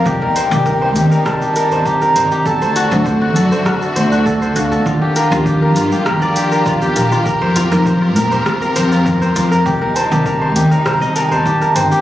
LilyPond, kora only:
\new Staff \with { instrumentName = "Kora" } { \time 4/4 \key c \dorian \tempo 4 = 100 g'16 bes'16 c''16 g'16 bes'16 c''16 g'16 bes'16 c''16 g'16 bes'16 c''16 g'16 bes'16 c''16 g'16 | a'16 c''16 fis'16 a'16 c''16 fis'16 a'16 c''16 fis'16 a'16 c''16 fis'16 a'16 c''16 fis'16 a'16 | f'16 g'16 bes'16 f'16 g'16 bes'16 f'16 g'16 bes'16 d''16 g'16 bes'16 f'16 g'16 bes'16 f'16 | bes'16 c''16 f'16 bes'16 c''16 f'16 bes'16 c''16 f'16 bes'16 c''16 f'16 bes'16 c''16 f'16 bes'16 |
g'16 bes'16 c''16 g'16 bes'16 c''16 g'16 bes'16 c''16 ees''16 bes'16 c''16 g'16 bes'16 c''16 g'16 | }